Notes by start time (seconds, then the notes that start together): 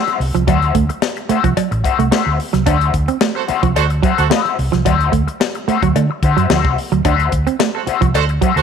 Already playing: F#4 C5 E5
0.07 muted clean electric guitar stroke, closed hi-hat
0.20 C2, muted clean electric guitar stroke, open hi-hat
0.35 C2 F3, muted clean electric guitar stroke, closed hi-hat
0.47 D2 F#3 F#4 C5 E5, kick, closed hi-hat, cowbell
0.62 closed hi-hat
0.75 D2 A3, kick, closed hi-hat
0.89 muted clean electric guitar stroke, closed hi-hat
1.02 muted clean electric guitar stroke, snare, cowbell
1.16 muted clean electric guitar stroke, closed hi-hat
1.29 A3 F#4 C5 E5, muted fingered electric bass stroke, closed hi-hat
1.44 C2 F3, muted clean electric guitar stroke, kick, closed hi-hat
1.57 F#3, muted fingered electric bass stroke, closed hi-hat, cowbell
1.71 A1, muted clean electric guitar stroke, closed hi-hat
1.84 F#4 C5 E5, kick, closed hi-hat
1.99 C2 A3, muted clean electric guitar stroke, closed hi-hat
2.11 A3 F#4 C5 E5, snare, cowbell
2.26 D2, muted clean electric guitar stroke
2.39 muted clean electric guitar stroke, open hi-hat
2.53 C2 F#3, muted clean electric guitar stroke, snare, closed hi-hat
2.66 D2 D4 F#4 C5 E5, kick, closed hi-hat, cowbell
2.81 closed hi-hat
2.94 D2, muted clean electric guitar stroke, kick, closed hi-hat
3.08 C4, muted clean electric guitar stroke, closed hi-hat
3.21 A3, muted clean electric guitar stroke, snare, cowbell
3.35 F#4 A4 C5, muted clean electric guitar stroke
3.48 F#4 C5 E5, muted clean electric guitar stroke, muted fingered electric bass stroke, closed hi-hat
3.63 C2 F3, muted clean electric guitar stroke, kick, closed hi-hat
3.76 D2 F#4 A4 C5, closed hi-hat, cowbell
3.90 muted clean electric guitar stroke, closed hi-hat
4.03 F#3 F#4 C5 E5, kick, closed hi-hat
4.18 D2 F#4 A4 C5, muted clean electric guitar stroke, closed hi-hat
4.30 A3 F4 C5 E5, snare, cowbell
4.42 F#4, muted clean electric guitar stroke, closed hi-hat
4.59 C2, muted clean electric guitar stroke, open hi-hat
4.72 C2 F3, muted clean electric guitar stroke, snare, closed hi-hat
4.85 D2 F#3 F#4 C5 E5, kick, closed hi-hat, cowbell
5.00 closed hi-hat
5.12 D2 A3, kick, closed hi-hat
5.28 muted clean electric guitar stroke, closed hi-hat
5.41 muted clean electric guitar stroke, snare, cowbell
5.55 muted clean electric guitar stroke, closed hi-hat
5.68 A3 F#4 C5 E5, muted fingered electric bass stroke, closed hi-hat
5.83 D2 F#3, muted clean electric guitar stroke, kick, closed hi-hat
5.96 D3 A3, muted clean electric guitar stroke, closed hi-hat, cowbell
6.11 muted clean electric guitar stroke
6.23 D3 F#4 C5 E5, kick, closed hi-hat
6.37 F#2 F#3 F#4 C5 E5, closed hi-hat
6.50 D2 F3 F#4 C5 E5, snare, cowbell
6.65 C2, muted clean electric guitar stroke, kick
6.78 muted clean electric guitar stroke, open hi-hat
6.92 D2 F#3, muted clean electric guitar stroke, closed hi-hat
7.05 D2 D4 F#4 C5 E5, kick, closed hi-hat, cowbell
7.20 closed hi-hat
7.32 D2, muted clean electric guitar stroke, kick, closed hi-hat
7.47 C4, muted clean electric guitar stroke, closed hi-hat
7.59 A3, muted clean electric guitar stroke, snare, cowbell
7.74 F#4 A4 C5, muted clean electric guitar stroke
7.87 F#4 C5 E5, muted clean electric guitar stroke, muted fingered electric bass stroke, closed hi-hat
8.01 C2 F3, muted clean electric guitar stroke, kick, closed hi-hat
8.14 D2 F#4 A4 C5, closed hi-hat, cowbell
8.29 muted clean electric guitar stroke, closed hi-hat
8.41 F#3 F#4 C5 E5, kick, closed hi-hat
8.56 D2 F#4 A4 C5, muted clean electric guitar stroke, closed hi-hat